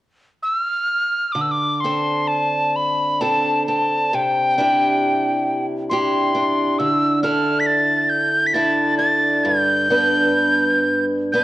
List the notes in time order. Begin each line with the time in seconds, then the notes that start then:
0.43 E6
0.60 F6
1.32 D3 D6
1.41 E6
1.47 D6 E6
1.80 C4 C6
1.85 D4 A4
2.28 A5
2.76 B5
3.21 C4 D4 A4 A5
3.66 C4 A5
4.13 C3 G5
4.58 D4 E4 G4
5.90 D4 E4 G4 C6
6.35 D4
6.79 D3 E6
7.23 D4 E4 A4 F6
7.60 B6
7.66 A6
8.09 G6
8.47 B6
8.54 D4 E4 A4 A6
8.98 D4 A6
9.44 G2 G6
9.90 B3 D4 B4
11.32 B3 D4 B4 G6